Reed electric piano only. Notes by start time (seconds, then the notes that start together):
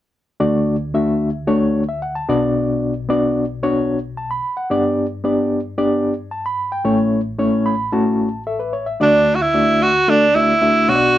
0.40 D2 D3 A3 D4 F#4 D5
0.94 A3 D4 F#4 E5
1.47 A3 D4 F#4 C#5
1.89 E5
2.02 F#5
2.15 A5
2.29 B1 B2 B3 D4 F#4 D5
3.09 B3 D4 F#4 D5
3.63 B3 D4 F#4 C#5
4.17 A5
4.31 B5
4.57 F#5
4.70 G2 B3 D4 G4 D5
5.24 B3 D4 G4 D5
5.78 B3 D4 G4 D5
6.31 A5
6.46 B5
6.72 G5
6.84 A1 A2 A3 C#4 E4 C#5
7.38 A3 C#4 E4 C#5
7.66 B5
7.92 A3 C#4 E4 F#4 A5
8.47 A4 E5
8.60 B4
8.73 C#5
8.86 E5
9.00 D2 D3 A3 D4 F#4 D5
9.54 A3 D4 F#4 D5
10.08 A3 D4 F#4 A4
10.35 A3 D4 F#4 D5
10.62 A3 D4 F#4 E5
10.88 B1 B2 B3 D4 F#4 C#5
10.95 D5